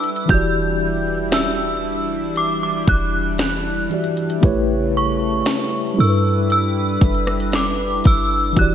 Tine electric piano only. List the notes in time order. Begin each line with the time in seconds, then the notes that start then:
Already playing: G3 D4 E4 A4 B4
0.26 E3 E4
0.30 F#4 G4
0.34 D5
3.90 E3 E4 F#4 G4
3.94 D5
4.41 A3 E4 G4 B4
4.45 C#5
5.94 G3 D4
5.98 E4 A4
6.03 A#4
6.09 B4
8.53 E3 E4
8.57 F#4 G4
8.61 D5